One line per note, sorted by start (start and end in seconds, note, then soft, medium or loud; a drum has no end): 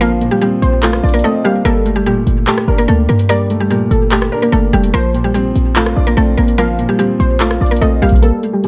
0.00 0.30 A1 loud
0.00 0.21 A#2 medium
0.00 1.67 F3 loud
0.00 0.83 A#3 medium
0.00 0.30 A#3 medium
0.00 0.42 C4 loud
0.00 0.42 D4 medium
0.00 0.21 F4 loud
0.00 0.30 A#4 loud
0.00 0.59 F5 loud
0.00 closed hi-hat loud
0.21 1.24 A#2 medium
0.21 closed hi-hat medium
0.31 0.40 G3 medium
0.31 0.40 G4 medium
0.42 0.81 G3 medium
0.42 1.22 C4 medium
0.42 0.80 G4 medium
0.42 closed hi-hat medium
0.62 1.02 A#1 loud
0.62 1.01 C5 medium
0.62 closed hi-hat medium
0.83 1.12 A3 medium
0.83 1.65 F4 loud
0.83 1.12 A4 medium
0.83 clap loud
0.83 closed hi-hat medium
0.93 cross-stick loud
1.04 1.23 A#1 loud
1.04 1.65 D4 medium
1.04 1.23 D5 medium
1.04 closed hi-hat soft
1.09 closed hi-hat soft
1.14 1.23 A#3 medium
1.14 1.22 A#4 medium
1.14 closed hi-hat medium
1.19 closed hi-hat medium
1.24 1.42 A3 medium
1.24 1.65 C4 medium
1.24 1.41 A4 medium
1.24 1.44 D#5 medium
1.45 1.62 G3 medium
1.45 1.65 A#3 medium
1.45 1.62 G4 medium
1.45 1.64 F5 medium
1.65 2.24 G1 loud
1.65 2.68 G3 loud
1.65 1.95 A#3 medium
1.65 2.64 A4 loud
1.65 1.94 A#4 loud
1.65 closed hi-hat loud
1.85 2.88 A3 medium
1.85 closed hi-hat medium
1.96 2.05 G3 medium
1.96 2.04 G4 medium
2.06 3.09 A#2 medium
2.06 2.45 G3 medium
2.06 2.45 G4 medium
2.06 closed hi-hat medium
2.27 2.46 G1 loud
2.27 closed hi-hat medium
2.47 2.77 A3 medium
2.47 3.50 G4 loud
2.47 2.76 A4 medium
2.47 clap loud
2.47 closed hi-hat medium
2.58 cross-stick loud
2.68 2.88 G1 loud
2.68 3.71 D4 medium
2.68 2.87 A#4 medium
2.68 closed hi-hat soft
2.78 2.87 A#3 medium
2.78 2.87 A#4 medium
2.78 closed hi-hat medium
2.88 3.08 D2 loud
2.88 3.06 A3 medium
2.88 3.91 A#3 medium
2.88 3.05 A4 medium
2.88 closed hi-hat medium
3.09 3.88 G2 loud
3.09 3.26 A#3 medium
3.09 3.26 A#4 medium
3.09 closed hi-hat soft
3.19 closed hi-hat medium
3.29 4.33 G3 loud
3.29 3.59 A#3 medium
3.29 3.58 A#4 loud
3.29 3.88 D5 loud
3.29 closed hi-hat loud
3.50 4.53 A3 medium
3.50 closed hi-hat medium
3.60 3.69 G3 medium
3.60 3.69 G4 medium
3.70 4.73 A#2 medium
3.70 4.10 G3 medium
3.70 4.09 G4 medium
3.70 closed hi-hat medium
3.91 4.31 G1 loud
3.91 4.30 A4 medium
3.91 closed hi-hat medium
4.12 4.41 A3 medium
4.12 4.94 G4 loud
4.12 4.41 A4 medium
4.12 clap loud
4.12 closed hi-hat medium
4.22 cross-stick loud
4.32 4.94 D4 medium
4.32 4.90 A#4 medium
4.32 closed hi-hat soft
4.42 4.51 A#3 medium
4.42 4.51 A#4 medium
4.42 closed hi-hat medium
4.52 4.73 G1 loud
4.52 4.70 A3 medium
4.52 4.94 A#3 medium
4.52 4.69 A4 medium
4.52 closed hi-hat medium
4.73 4.93 F1 loud
4.73 4.91 G3 medium
4.73 4.94 A3 medium
4.73 4.90 G4 medium
4.73 closed hi-hat soft
4.84 closed hi-hat medium
4.94 5.53 A#1 loud
4.94 5.96 F3 loud
4.94 5.23 A#3 medium
4.94 5.23 A#4 loud
4.94 5.93 C5 loud
4.94 closed hi-hat loud
5.14 6.17 A#2 medium
5.14 closed hi-hat medium
5.24 5.33 G3 medium
5.24 5.33 G4 medium
5.34 5.74 G3 medium
5.34 6.15 C4 loud
5.34 5.73 G4 medium
5.34 closed hi-hat medium
5.56 5.95 A#1 loud
5.56 closed hi-hat medium
5.76 6.06 A3 medium
5.76 6.79 F4 loud
5.76 6.05 A4 medium
5.76 clap loud
5.76 closed hi-hat medium
5.86 cross-stick loud
5.96 6.16 A#1 loud
5.96 6.99 D4 medium
5.96 6.16 D5 medium
5.96 closed hi-hat soft
6.07 6.16 A#3 medium
6.07 6.15 A#4 medium
6.07 closed hi-hat medium
6.17 6.37 A#1 loud
6.17 6.34 A3 medium
6.17 6.98 C4 medium
6.17 6.34 A4 medium
6.17 closed hi-hat medium
6.38 6.87 A1 loud
6.38 7.40 A#3 medium
6.38 6.55 A#3 medium
6.38 6.55 A#4 medium
6.38 closed hi-hat soft
6.48 closed hi-hat medium
6.58 7.61 F3 loud
6.58 6.88 A#3 medium
6.58 6.87 A#4 loud
6.58 7.16 F5 medium
6.58 closed hi-hat loud
6.79 7.81 A#2 medium
6.79 closed hi-hat medium
6.89 6.98 G3 medium
6.89 6.97 G4 medium
6.99 7.38 G3 medium
6.99 7.80 C4 medium
6.99 7.38 G4 medium
6.99 closed hi-hat medium
7.20 7.59 A#1 loud
7.20 7.59 C5 medium
7.20 closed hi-hat medium
7.40 7.70 A3 medium
7.40 8.23 F4 loud
7.40 7.69 A4 medium
7.40 clap loud
7.40 closed hi-hat medium
7.51 cross-stick loud
7.61 7.81 A#1 loud
7.61 8.23 D4 medium
7.61 7.81 D5 medium
7.61 closed hi-hat soft
7.66 closed hi-hat soft
7.71 7.80 A#3 medium
7.71 7.80 A#4 medium
7.71 closed hi-hat medium
7.76 closed hi-hat medium
7.81 8.01 A#1 loud
7.81 7.99 A3 medium
7.81 8.22 C4 medium
7.81 7.99 A4 medium
7.81 8.01 D#5 medium
7.81 closed hi-hat medium
8.02 8.22 A#1 loud
8.02 8.20 G3 medium
8.02 8.23 A#3 medium
8.02 8.19 G4 medium
8.02 8.22 F5 medium
8.02 closed hi-hat soft
8.09 kick loud
8.09 closed hi-hat medium
8.16 closed hi-hat medium
8.22 8.68 G3 medium
8.22 8.52 A#3 medium
8.22 8.68 A4 loud
8.22 8.52 A#4 loud
8.22 closed hi-hat loud
8.43 8.68 A3 medium
8.43 closed hi-hat medium
8.53 8.62 G3 medium
8.53 8.62 G4 medium
8.63 8.68 A#2 medium
8.63 8.68 G4 medium
8.63 closed hi-hat medium